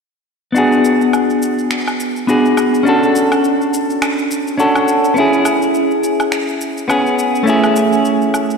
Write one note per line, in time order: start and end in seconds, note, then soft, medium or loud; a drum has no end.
0.52 2.24 B3 medium
0.52 2.25 D4 medium
0.52 shaker soft
0.56 2.26 F#4 medium
0.56 2.27 G#4 medium
0.72 shaker soft
0.85 shaker medium
1.01 shaker soft
1.13 low woodblock medium
1.13 shaker soft
1.30 shaker soft
1.42 shaker medium
1.59 shaker soft
1.71 finger snap medium
1.71 shaker soft
1.88 low woodblock medium
1.88 shaker soft
2.00 shaker medium
2.16 shaker soft
2.27 2.83 B3 medium
2.27 2.83 D4 medium
2.27 2.84 F#4 medium
2.27 2.84 G#4 medium
2.27 shaker soft
2.45 shaker soft
2.57 low woodblock medium
2.57 shaker medium
2.74 shaker soft
2.83 4.55 C#4 medium
2.83 4.56 D4 medium
2.83 4.57 F#4 medium
2.83 shaker soft
2.89 4.58 A4 medium
3.03 shaker soft
3.15 shaker medium
3.32 low woodblock medium
3.32 shaker soft
3.44 shaker soft
3.61 shaker soft
3.74 shaker medium
3.90 shaker soft
4.02 finger snap medium
4.02 low woodblock medium
4.02 shaker soft
4.19 shaker soft
4.31 shaker medium
4.48 shaker soft
4.58 5.13 C#4 medium
4.58 5.14 D4 medium
4.58 5.14 F#4 medium
4.58 5.15 A4 medium
4.58 shaker soft
4.75 low woodblock medium
4.75 shaker soft
4.88 shaker medium
5.05 shaker soft
5.14 5.18 B3 medium
5.14 6.87 C#4 medium
5.14 shaker soft
5.18 6.87 E4 medium
5.18 6.89 G#4 medium
5.33 shaker soft
5.45 low woodblock medium
5.45 shaker medium
5.62 shaker soft
5.74 shaker soft
5.91 shaker soft
6.03 shaker medium
6.20 low woodblock medium
6.20 shaker soft
6.32 finger snap medium
6.32 shaker soft
6.48 shaker soft
6.61 shaker medium
6.77 shaker soft
6.88 7.44 B3 medium
6.88 7.44 C#4 medium
6.88 7.45 G#4 medium
6.88 low woodblock medium
6.88 shaker soft
7.07 shaker soft
7.19 shaker medium
7.35 shaker soft
7.43 8.57 A3 medium
7.43 8.57 C#4 medium
7.43 shaker soft
7.47 8.57 E4 medium
7.47 8.57 G#4 medium
7.64 low woodblock medium
7.64 shaker soft
7.76 shaker medium
7.93 shaker soft
8.05 shaker soft
8.22 shaker soft
8.34 low woodblock medium
8.34 shaker medium
8.51 shaker soft